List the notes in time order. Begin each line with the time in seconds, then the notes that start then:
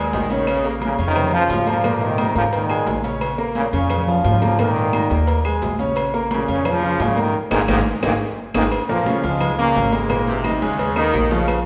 Already playing: G#3 G#4 G#5
0.13 A#1 D#3, cowbell, high conga, low timbale, maracas
0.30 C#3 C#4 C#5, cowbell, high conga, maracas
0.47 C#3, cowbell, high conga, low agogo, claves, maracas
0.64 A#3 A#4 A#5, high conga, maracas
0.81 A#2 C#3, cowbell, high conga, low timbale, low agogo, maracas
0.98 F2 C#3 C#4 C#5, high conga, low agogo, maracas
1.05 C3 D#3
1.16 cowbell, high conga, low conga, low agogo, claves, maracas
1.32 C#3 F3 F4 F5, high conga, maracas
1.50 G#2, cowbell, high conga, low timbale, low agogo, maracas
1.67 A#2 F3 A#3 A#4 A#5, high conga, low agogo, maracas
1.84 A#2 A#3 A#4, cowbell, high conga, low agogo, claves, maracas
2.01 C3 D#3, cowbell, high conga, maracas
2.18 D#3 D#4 D#5, cowbell, high conga, low timbale, low agogo, claves, maracas
2.35 G#2 C#3 F3 A#3 A#4 A#5, cowbell, high conga, maracas
2.53 A#2 D#3, cowbell, high conga, low agogo, maracas
2.70 G#3 G#4 G#5, high conga, low agogo, claves, maracas
2.87 A#1, cowbell, high conga, low timbale, maracas
3.04 C#3 C#4 C#5, cowbell, high conga, maracas
3.21 cowbell, high conga, low agogo, claves, maracas
3.38 A#3 A#4 A#5, high conga, maracas
3.55 A#2 C#3, cowbell, high conga, low timbale, low agogo, maracas
3.73 F2 A#2 C#3 C#4 C#5, high conga, low agogo, maracas
3.90 cowbell, high conga, low conga, low agogo, claves, maracas
4.07 F3 F4 F5, high conga, low conga, maracas
4.24 G#2 C#3 F3, cowbell, high conga, low timbale, low agogo, maracas
4.41 A#3 A#4 A#5, high conga, low agogo, maracas
4.59 A#2 D#3 A#3 A#4, cowbell, high conga, low agogo, claves, maracas
4.76 cowbell, high conga, maracas
4.93 D#3 D#4 D#5, cowbell, high conga, low timbale, low agogo, claves, maracas
5.10 D#2 A#3 A#4 A#5, cowbell, high conga, maracas
5.27 cowbell, high conga, low agogo, maracas
5.45 G#3 G#4 G#5, high conga, low agogo, claves, maracas
5.62 A#1, cowbell, high conga, low timbale, maracas
5.79 C#3 C#4 C#5, cowbell, high conga, maracas
5.96 cowbell, high conga, low agogo, claves, maracas
6.13 A#3 A#4 A#5, high conga, maracas
6.30 A#2 C#3, cowbell, high conga, low timbale, low agogo, maracas
6.48 F2 A#2 C#3 C#4 C#5, high conga, low agogo, maracas
6.65 C#3 F3, cowbell, high conga, low conga, low agogo, claves, maracas
6.82 F3 F4 F5, high conga, low conga, maracas
7.00 G#2 A#2 C#3, cowbell, high conga, low timbale, low agogo, maracas
7.17 A#2 D#3 A#3 A#4 A#5, high conga, low agogo, maracas
7.51 G#1 G#2 A#2 D#3 A#3 D#4 G#4, cowbell, high conga, high timbale, claves, maracas
7.68 G#1 G#2 A#2 D#3 A#3 D#4 G#4, cowbell, high conga, high timbale, claves, maracas
8.02 G#1 G#2 A#2 D#3 A#3 D#4 G#4, cowbell, high conga, high timbale, claves, maracas
8.54 G#1 G#2 A#2 D#3 A#3 D#4 G#4, cowbell, high conga, high timbale, claves, maracas
8.72 cowbell, high conga, low agogo, claves, maracas
8.89 A#2 F3 A#3 F4 A#4, high conga, maracas
9.06 C#3 C#4 C#5, cowbell, high conga, low timbale, low agogo, maracas
9.23 C#2 G#2 F3 G#3 F4 F5, high conga, low agogo, maracas
9.41 cowbell, high conga, low conga, low agogo, claves, maracas
9.58 A#2 C#3 A#3 C#4 C#5, high conga, maracas
9.75 G#1, cowbell, high conga, low timbale, low agogo, maracas
9.92 G#2 G#3 A#3 A#4 A#5, high conga, low agogo, maracas
10.09 A#2 A#3 A#4, cowbell, high conga, low agogo, claves, maracas
10.27 C3, cowbell, high conga, maracas
10.44 D#3 D#4 D#5, cowbell, high conga, low timbale, low agogo, claves, maracas
10.62 D#2 C#3 G#3 G#4 G#5, cowbell, high conga, maracas
10.79 cowbell, high conga, low agogo, maracas
10.96 D#3 A#3 A#4 A#5, high conga, low agogo, claves, maracas
11.14 A#1, cowbell, high conga, low timbale, maracas
11.30 C#3 F3 F4 F5, cowbell, high conga, maracas
11.48 cowbell, high conga, low agogo, claves, maracas